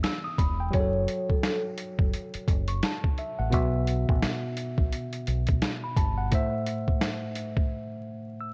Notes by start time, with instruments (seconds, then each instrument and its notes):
0.03 tine electric piano E6, snare, closed hi-hat
0.24 tine electric piano D#6
0.38 fingered electric bass E1, tine electric piano B5, kick, closed hi-hat
0.60 tine electric piano G5
0.70 fingered electric bass F#1, tine electric piano F#3 F#4 G#4, vibraphone C#5, kick, closed hi-hat
0.75 tine electric piano C#5
0.80 tine electric piano A4
1.08 closed hi-hat
1.29 vibraphone A4, kick
1.43 snare, closed hi-hat
1.78 closed hi-hat
1.99 fingered electric bass F#1, kick
2.13 closed hi-hat
2.34 muted fingered electric bass stroke, closed hi-hat
2.48 fingered electric bass F#1, kick, closed hi-hat
2.68 tine electric piano C#6, closed hi-hat
2.83 tine electric piano A5, snare, closed hi-hat
3.04 kick
3.18 tine electric piano E5, closed hi-hat
3.39 fingered electric bass A1, tine electric piano F#5
3.50 fingered electric bass B1, tine electric piano B2 B3 F#4, kick, closed hi-hat
3.54 tine electric piano E5
3.87 closed hi-hat
4.09 fingered electric bass A1, kick
4.22 snare, closed hi-hat
4.57 closed hi-hat
4.78 fingered electric bass B1, kick
4.92 closed hi-hat
5.13 closed hi-hat
5.27 fingered electric bass B1, closed hi-hat
5.47 kick, closed hi-hat
5.62 snare, closed hi-hat
5.84 tine electric piano B5
5.96 fingered electric bass G1, tine electric piano A5, kick, closed hi-hat
6.17 tine electric piano F#5
6.31 tine electric piano A2 A3 C5, kick, closed hi-hat
6.35 tine electric piano E5
6.66 closed hi-hat
6.88 kick
7.01 snare, closed hi-hat
7.36 closed hi-hat
7.57 kick
8.41 tine electric piano E6